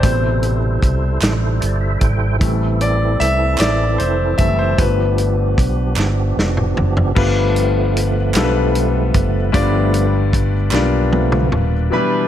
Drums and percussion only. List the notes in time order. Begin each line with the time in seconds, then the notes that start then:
0.03 kick, closed hi-hat
0.43 closed hi-hat
0.82 kick, closed hi-hat
1.21 snare, clap, closed hi-hat
1.62 closed hi-hat
2.01 kick, closed hi-hat
2.41 kick, closed hi-hat
2.81 closed hi-hat
3.21 closed hi-hat
3.58 snare, clap, closed hi-hat
4.00 closed hi-hat
4.38 kick, closed hi-hat
4.78 kick, closed hi-hat
5.18 closed hi-hat
5.58 kick, closed hi-hat
5.96 snare, clap
6.39 snare
6.57 mid tom
6.77 floor tom
6.97 floor tom
7.16 kick, crash
7.56 closed hi-hat
7.97 closed hi-hat
8.34 snare, clap, closed hi-hat
8.75 closed hi-hat
9.14 kick, closed hi-hat
9.54 kick, closed hi-hat
9.94 closed hi-hat
10.33 kick, closed hi-hat
10.71 snare, clap
11.13 high tom
11.32 mid tom
11.52 mid tom